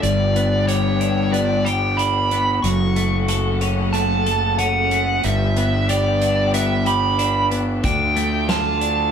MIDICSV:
0, 0, Header, 1, 6, 480
1, 0, Start_track
1, 0, Tempo, 650618
1, 27, Time_signature, 4, 2, 24, 8
1, 6725, End_track
2, 0, Start_track
2, 0, Title_t, "Lead electric guitar"
2, 0, Program_c, 0, 29
2, 17, Note_on_c, 0, 74, 58
2, 494, Note_off_c, 0, 74, 0
2, 497, Note_on_c, 0, 73, 59
2, 975, Note_off_c, 0, 73, 0
2, 977, Note_on_c, 0, 74, 63
2, 1215, Note_on_c, 0, 79, 66
2, 1229, Note_off_c, 0, 74, 0
2, 1454, Note_on_c, 0, 83, 68
2, 1468, Note_off_c, 0, 79, 0
2, 1910, Note_off_c, 0, 83, 0
2, 1936, Note_on_c, 0, 85, 75
2, 2897, Note_on_c, 0, 81, 66
2, 2930, Note_off_c, 0, 85, 0
2, 3379, Note_off_c, 0, 81, 0
2, 3382, Note_on_c, 0, 78, 60
2, 3869, Note_on_c, 0, 76, 63
2, 3878, Note_off_c, 0, 78, 0
2, 4345, Note_off_c, 0, 76, 0
2, 4348, Note_on_c, 0, 74, 54
2, 4797, Note_off_c, 0, 74, 0
2, 4825, Note_on_c, 0, 76, 58
2, 5048, Note_off_c, 0, 76, 0
2, 5068, Note_on_c, 0, 83, 58
2, 5517, Note_off_c, 0, 83, 0
2, 5790, Note_on_c, 0, 79, 64
2, 6266, Note_off_c, 0, 79, 0
2, 6269, Note_on_c, 0, 81, 61
2, 6717, Note_off_c, 0, 81, 0
2, 6725, End_track
3, 0, Start_track
3, 0, Title_t, "String section"
3, 0, Program_c, 1, 48
3, 19, Note_on_c, 1, 71, 48
3, 22, Note_on_c, 1, 62, 53
3, 24, Note_on_c, 1, 79, 58
3, 25, Note_on_c, 1, 67, 52
3, 1923, Note_off_c, 1, 71, 0
3, 1925, Note_off_c, 1, 62, 0
3, 1926, Note_off_c, 1, 67, 0
3, 1926, Note_off_c, 1, 79, 0
3, 1942, Note_on_c, 1, 69, 53
3, 1944, Note_on_c, 1, 61, 51
3, 1944, Note_on_c, 1, 66, 52
3, 1944, Note_on_c, 1, 78, 62
3, 3844, Note_off_c, 1, 69, 0
3, 3845, Note_off_c, 1, 61, 0
3, 3845, Note_off_c, 1, 66, 0
3, 3845, Note_off_c, 1, 78, 0
3, 3859, Note_on_c, 1, 71, 52
3, 3862, Note_on_c, 1, 62, 56
3, 3862, Note_on_c, 1, 67, 47
3, 3862, Note_on_c, 1, 79, 62
3, 5763, Note_off_c, 1, 71, 0
3, 5764, Note_off_c, 1, 67, 0
3, 5764, Note_off_c, 1, 79, 0
3, 5789, Note_on_c, 1, 65, 50
3, 5791, Note_on_c, 1, 69, 52
3, 5792, Note_on_c, 1, 77, 61
3, 6725, Note_off_c, 1, 62, 0
3, 6725, Note_off_c, 1, 65, 0
3, 6725, Note_off_c, 1, 69, 0
3, 6725, Note_off_c, 1, 77, 0
3, 6725, End_track
4, 0, Start_track
4, 0, Title_t, "Clean electric guitar"
4, 0, Program_c, 2, 27
4, 23, Note_on_c, 2, 43, 53
4, 268, Note_on_c, 2, 59, 48
4, 503, Note_on_c, 2, 67, 48
4, 741, Note_on_c, 2, 62, 44
4, 969, Note_off_c, 2, 59, 0
4, 978, Note_on_c, 2, 59, 53
4, 1214, Note_off_c, 2, 67, 0
4, 1223, Note_on_c, 2, 67, 57
4, 1225, Note_off_c, 2, 43, 0
4, 1453, Note_off_c, 2, 62, 0
4, 1461, Note_on_c, 2, 62, 47
4, 1700, Note_off_c, 2, 59, 0
4, 1709, Note_on_c, 2, 59, 50
4, 1944, Note_off_c, 2, 62, 0
4, 1944, Note_off_c, 2, 67, 0
4, 1947, Note_off_c, 2, 59, 0
4, 1949, Note_on_c, 2, 42, 58
4, 2186, Note_on_c, 2, 57, 51
4, 2426, Note_on_c, 2, 69, 54
4, 2666, Note_on_c, 2, 61, 47
4, 2898, Note_off_c, 2, 57, 0
4, 2907, Note_on_c, 2, 57, 56
4, 3138, Note_off_c, 2, 69, 0
4, 3147, Note_off_c, 2, 42, 0
4, 3147, Note_on_c, 2, 69, 56
4, 3377, Note_off_c, 2, 61, 0
4, 3386, Note_on_c, 2, 61, 49
4, 3618, Note_off_c, 2, 57, 0
4, 3627, Note_on_c, 2, 57, 45
4, 3865, Note_off_c, 2, 61, 0
4, 3866, Note_off_c, 2, 57, 0
4, 3866, Note_off_c, 2, 69, 0
4, 3868, Note_on_c, 2, 43, 53
4, 4110, Note_on_c, 2, 59, 54
4, 4347, Note_on_c, 2, 67, 53
4, 4587, Note_on_c, 2, 62, 46
4, 4818, Note_off_c, 2, 59, 0
4, 4827, Note_on_c, 2, 59, 54
4, 5057, Note_off_c, 2, 67, 0
4, 5066, Note_off_c, 2, 43, 0
4, 5066, Note_on_c, 2, 67, 52
4, 5299, Note_off_c, 2, 62, 0
4, 5302, Note_on_c, 2, 62, 47
4, 5534, Note_off_c, 2, 59, 0
4, 5543, Note_on_c, 2, 59, 46
4, 5782, Note_on_c, 2, 50, 52
4, 5784, Note_off_c, 2, 59, 0
4, 5785, Note_off_c, 2, 67, 0
4, 6021, Note_on_c, 2, 57, 53
4, 6262, Note_on_c, 2, 65, 55
4, 6498, Note_off_c, 2, 62, 0
4, 6501, Note_on_c, 2, 62, 44
4, 6725, Note_off_c, 2, 50, 0
4, 6725, Note_off_c, 2, 57, 0
4, 6725, Note_off_c, 2, 62, 0
4, 6725, Note_off_c, 2, 65, 0
4, 6725, End_track
5, 0, Start_track
5, 0, Title_t, "Fingered electric bass"
5, 0, Program_c, 3, 33
5, 24, Note_on_c, 3, 31, 58
5, 1915, Note_off_c, 3, 31, 0
5, 1946, Note_on_c, 3, 30, 56
5, 3836, Note_off_c, 3, 30, 0
5, 3869, Note_on_c, 3, 31, 55
5, 5757, Note_off_c, 3, 31, 0
5, 5784, Note_on_c, 3, 38, 52
5, 6725, Note_off_c, 3, 38, 0
5, 6725, End_track
6, 0, Start_track
6, 0, Title_t, "Drums"
6, 24, Note_on_c, 9, 42, 61
6, 98, Note_off_c, 9, 42, 0
6, 266, Note_on_c, 9, 42, 45
6, 339, Note_off_c, 9, 42, 0
6, 506, Note_on_c, 9, 42, 60
6, 580, Note_off_c, 9, 42, 0
6, 744, Note_on_c, 9, 42, 44
6, 818, Note_off_c, 9, 42, 0
6, 987, Note_on_c, 9, 42, 60
6, 1061, Note_off_c, 9, 42, 0
6, 1227, Note_on_c, 9, 42, 47
6, 1301, Note_off_c, 9, 42, 0
6, 1469, Note_on_c, 9, 42, 50
6, 1543, Note_off_c, 9, 42, 0
6, 1707, Note_on_c, 9, 42, 41
6, 1780, Note_off_c, 9, 42, 0
6, 1948, Note_on_c, 9, 42, 56
6, 2021, Note_off_c, 9, 42, 0
6, 2186, Note_on_c, 9, 42, 43
6, 2260, Note_off_c, 9, 42, 0
6, 2423, Note_on_c, 9, 42, 62
6, 2497, Note_off_c, 9, 42, 0
6, 2664, Note_on_c, 9, 42, 43
6, 2738, Note_off_c, 9, 42, 0
6, 2904, Note_on_c, 9, 42, 52
6, 2978, Note_off_c, 9, 42, 0
6, 3146, Note_on_c, 9, 42, 45
6, 3220, Note_off_c, 9, 42, 0
6, 3384, Note_on_c, 9, 42, 60
6, 3457, Note_off_c, 9, 42, 0
6, 3624, Note_on_c, 9, 42, 44
6, 3698, Note_off_c, 9, 42, 0
6, 3863, Note_on_c, 9, 42, 58
6, 3937, Note_off_c, 9, 42, 0
6, 4105, Note_on_c, 9, 42, 43
6, 4179, Note_off_c, 9, 42, 0
6, 4346, Note_on_c, 9, 42, 64
6, 4420, Note_off_c, 9, 42, 0
6, 4586, Note_on_c, 9, 42, 47
6, 4660, Note_off_c, 9, 42, 0
6, 4825, Note_on_c, 9, 42, 63
6, 4898, Note_off_c, 9, 42, 0
6, 5063, Note_on_c, 9, 42, 47
6, 5137, Note_off_c, 9, 42, 0
6, 5305, Note_on_c, 9, 42, 57
6, 5379, Note_off_c, 9, 42, 0
6, 5544, Note_on_c, 9, 42, 44
6, 5618, Note_off_c, 9, 42, 0
6, 5781, Note_on_c, 9, 42, 59
6, 5784, Note_on_c, 9, 36, 75
6, 5855, Note_off_c, 9, 42, 0
6, 5857, Note_off_c, 9, 36, 0
6, 6024, Note_on_c, 9, 42, 46
6, 6098, Note_off_c, 9, 42, 0
6, 6263, Note_on_c, 9, 38, 78
6, 6263, Note_on_c, 9, 42, 59
6, 6337, Note_off_c, 9, 38, 0
6, 6337, Note_off_c, 9, 42, 0
6, 6502, Note_on_c, 9, 42, 46
6, 6576, Note_off_c, 9, 42, 0
6, 6725, End_track
0, 0, End_of_file